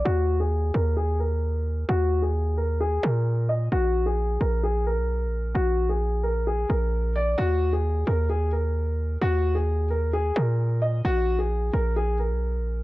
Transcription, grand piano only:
\new Staff \with { instrumentName = "Grand piano" } { \time 4/4 \key ees \minor \tempo 4 = 131 ges'8. aes'8. bes'8 aes'8 bes'4. | ges'8. aes'8. bes'8 aes'8 bes'4 ees''8 | ges'8. aes'8. bes'8 aes'8 bes'4. | ges'8. aes'8. bes'8 aes'8 bes'4 d''8 |
ges'8. aes'8. bes'8 aes'8 bes'4. | ges'8. aes'8. bes'8 aes'8 bes'4 ees''8 | ges'8. aes'8. bes'8 aes'8 bes'4. | }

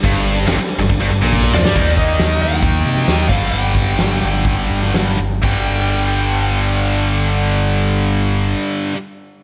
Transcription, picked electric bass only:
\new Staff \with { instrumentName = "Picked electric bass" } { \clef bass \time 4/4 \key g \minor \tempo 4 = 126 g,,4 f,,16 r8 g,,16 g,,16 g,,16 g,,16 bes,,8. f,16 g,16 | ees,8 ees,8 ees,8 ees,8 ees,8 c8 ees,8 g,,8 | g,,8 g,,8 g,,8 g,,8 g,,8 g,,8 g,,8 g,,8 | g,,1~ |
g,,1 | }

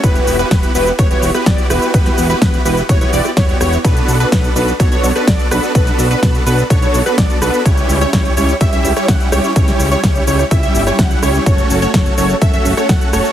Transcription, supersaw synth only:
\new Staff \with { instrumentName = "Supersaw synth" } { \time 4/4 \key b \minor \tempo 4 = 126 <b e' fis' b'>8. <b e' fis' g' b'>16 <b e' fis' g' b'>8 <b e' fis' g' b'>16 r16 <b e' fis' g' cis''>16 <b e' fis' g' cis''>8 <b e' fis' g' b'>16 <b e' fis' g' d''>8 <b e' fis' g' b'>8 | r8. <b e' fis' g' b'>16 <b e' g'>8 <b e' fis' g' b'>16 r16 <b e' fis' g' cis''>16 <b e' fis' g' cis''>16 <b e' fis' g' d''>16 r16 <b e' fis' g' cis''>8 <b e' fis' g' cis''>16 r16 | <b d' fis' a' b'>8. <b d' fis' a' b'>16 r8 <b d' fis' a' b'>16 r16 <b d' fis' a' cis''>16 <b d' fis' a' cis''>8 <b d' fis' a' b'>16 r8 <b d' fis' a' b'>8 | <b d' fis' b'>8. <b d' fis' a' b'>16 a'8 <b d' fis' a' b'>16 r16 <b d' fis' a' cis''>16 <b d' fis' a' cis''>8 <b d' fis' a' b'>16 r8 <b d' fis' a' b'>8 |
<g cis' e' g' cis''>8. <g cis' e' g' cis''>16 <g cis' e' g' cis''>8 <g cis' e' g' cis''>16 r16 <g cis' e' g' e''>16 <g cis' e' g' e''>8 <g cis' e' g' cis''>16 <cis' e' fis''>8 <g cis' e' g' cis''>8 | <g cis' e' g' cis''>8. <g cis' e' g' cis''>16 <g cis' g'>8 <g cis' e' g' cis''>16 r16 <g cis' e' g' e''>16 <g cis' e' g' e''>8 <g cis' e' g' cis''>16 <cis' fis''>8 <g cis' e' g' cis''>8 | <a cis' fis' cis''>8. <a cis' fis' a' cis''>16 r8 <a cis' fis' a' cis''>16 r16 <a cis' fis' a' e''>16 <a cis' fis' a' e''>8 <a cis' fis' a' cis''>16 r8 <a cis' fis' a' cis''>8 | }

